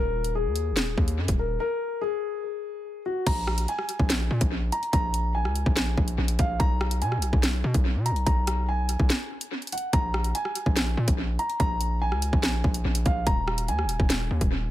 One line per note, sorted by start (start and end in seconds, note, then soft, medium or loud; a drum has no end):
0.00 0.47 D#1 loud
0.00 0.33 A#4 loud
0.24 closed hi-hat medium
0.35 1.35 G#4 medium
0.45 0.73 D#2 loud
0.56 closed hi-hat medium
0.71 0.96 D#1 loud
0.77 snare loud
0.77 closed hi-hat medium
0.98 1.20 D#2 loud
0.98 kick medium
1.08 closed hi-hat medium
1.18 1.28 F#2 loud
1.28 1.59 D#1 loud
1.28 kick medium
1.28 closed hi-hat medium
1.39 1.58 A#4 medium
1.60 1.99 A#4 loud
2.01 3.02 G#4 medium
3.06 3.25 F#4 medium
3.27 3.67 A#1 loud
3.27 3.66 A#5 loud
3.27 kick loud
3.27 closed hi-hat medium
3.27 crash loud
3.47 cross-stick loud
3.58 closed hi-hat medium
3.68 4.69 G#5 medium
3.68 closed hi-hat medium
3.79 cross-stick medium
3.89 closed hi-hat medium
4.00 4.30 A#1 loud
4.00 kick medium
4.10 snare loud
4.10 closed hi-hat medium
4.31 4.40 A#2 loud
4.41 4.71 A#1 loud
4.41 kick loud
4.41 closed hi-hat medium
4.72 4.91 A#5 medium
4.72 closed hi-hat medium
4.83 closed hi-hat soft
4.93 5.47 A#1 loud
4.93 5.32 A#5 loud
4.93 kick loud
4.93 closed hi-hat medium
5.14 closed hi-hat medium
5.35 6.35 G#5 medium
5.45 5.65 C#2 loud
5.45 cross-stick medium
5.55 closed hi-hat medium
5.66 5.96 A#1 loud
5.66 kick medium
5.76 snare loud
5.76 closed hi-hat medium
5.97 6.17 A#1 loud
5.97 kick loud
6.08 closed hi-hat medium
6.18 6.38 A#1 loud
6.28 closed hi-hat medium
6.39 6.59 A#1 loud
6.39 6.58 F5 medium
6.39 kick medium
6.39 closed hi-hat medium
6.60 7.03 B1 loud
6.60 6.99 A#5 loud
6.60 kick loud
6.60 closed hi-hat medium
6.81 cross-stick loud
6.91 closed hi-hat medium
7.02 7.19 B2 loud
7.02 8.02 G#5 medium
7.02 closed hi-hat medium
7.12 cross-stick medium
7.17 7.32 B1 loud
7.22 closed hi-hat medium
7.33 7.63 B1 loud
7.33 kick loud
7.43 snare loud
7.43 closed hi-hat medium
7.64 7.74 B2 loud
7.74 7.97 B1 loud
7.74 kick medium
7.74 closed hi-hat medium
7.95 8.12 B2 loud
8.06 8.25 A#5 medium
8.06 closed hi-hat medium
8.11 8.26 B1 loud
8.16 closed hi-hat soft
8.26 8.97 B1 loud
8.26 8.66 A#5 loud
8.26 kick loud
8.26 closed hi-hat medium
8.47 cross-stick loud
8.47 closed hi-hat medium
8.69 9.69 G#5 medium
8.89 closed hi-hat medium
9.00 9.10 B1 loud
9.00 kick loud
9.10 snare loud
9.10 closed hi-hat medium
9.41 closed hi-hat medium
9.62 closed hi-hat soft
9.67 closed hi-hat medium
9.72 9.91 F#5 medium
9.72 closed hi-hat medium
9.78 closed hi-hat medium
9.93 10.33 A#1 loud
9.93 10.32 A#5 loud
9.93 kick loud
9.93 closed hi-hat medium
10.14 cross-stick loud
10.24 closed hi-hat medium
10.35 11.35 G#5 medium
10.35 closed hi-hat medium
10.45 cross-stick medium
10.55 closed hi-hat medium
10.66 10.96 A#1 loud
10.66 kick loud
10.76 snare loud
10.76 closed hi-hat medium
10.97 11.07 A#2 loud
11.08 11.38 A#1 loud
11.08 kick loud
11.08 closed hi-hat medium
11.39 11.58 A#5 medium
11.39 closed hi-hat medium
11.50 closed hi-hat soft
11.60 12.13 A#1 loud
11.60 11.99 A#5 loud
11.60 kick loud
11.60 closed hi-hat medium
11.81 closed hi-hat medium
12.02 13.02 G#5 loud
12.12 12.32 C#2 loud
12.12 cross-stick medium
12.22 closed hi-hat medium
12.33 12.63 A#1 loud
12.33 kick loud
12.43 snare loud
12.43 closed hi-hat medium
12.64 12.84 A#1 loud
12.64 kick loud
12.74 closed hi-hat medium
12.85 13.05 A#1 loud
12.95 closed hi-hat medium
13.06 13.26 A#1 loud
13.06 13.25 F5 medium
13.06 kick medium
13.06 closed hi-hat medium
13.27 13.70 D#1 loud
13.27 13.66 A#5 loud
13.27 kick loud
13.27 closed hi-hat medium
13.48 cross-stick loud
13.58 closed hi-hat medium
13.68 13.85 D#2 loud
13.68 14.69 G#5 medium
13.68 closed hi-hat medium
13.79 cross-stick medium
13.84 13.99 D#1 loud
13.89 closed hi-hat medium
14.00 14.30 D#1 loud
14.00 kick loud
14.10 snare loud
14.10 closed hi-hat medium
14.31 14.41 D#2 loud
14.41 14.71 D#1 loud
14.41 kick medium
14.41 closed hi-hat medium